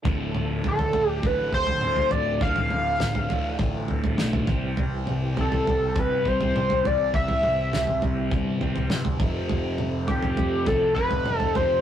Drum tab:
SD |----------------|----o-------o---|----------------|----o-------o---|
T2 |--o---------o---|--o---------o-o-|--o---------o---|--o---------o-o-|
FT |o---ooo-o--o-oo-|oo--ooo-o-oo-oo-|o---ooo-o--o-oo-|oo--ooo-o-oo-oo-|
BD |o-------o-o-----|o-------o-----o-|--------o-o-----|o-------o-----o-|

SD |----------------|
T2 |--o---------o---|
FT |o---ooo-o--o-oo-|
BD |--------o-o-----|